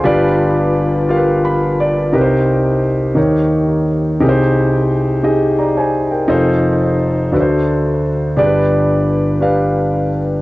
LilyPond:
<<
  \new Staff \with { instrumentName = "Grand piano" } { \time 6/8 \key g \phrygian \tempo 4. = 58 << { c'''16 r4. r16 b''8 d''8 | r2. | r2 <d'' bes''>16 <c'' aes''>8 <bes' g''>16~ | <bes' g''>16 r2 r8. |
r2. | } \\ { <f' g' b' d''>4 r8 <f' g' bes' b' f''>4 r8 | <ees' g' bes' b' c''>4 r8 <ees' g' bes' des''>4 r8 | <ees' g' aes' bes' c''>4 r8 <ees' g' aes' ees''>4 r8 | <ees' f' a' c''>4 r8 <d' fis' a' b' c''>4 r8 |
<d' g' aes' b' d''>4 r8 <d' g' b' f''>4 r8 | } >> }
  \new Staff \with { instrumentName = "Grand piano" } { \clef bass \time 6/8 \key g \phrygian <g,, g,>2. | <c, c>4. <ees, ees>4. | <c, c>2. | <f,, f,>4. <d, d>4. |
<g,, g,>2. | }
>>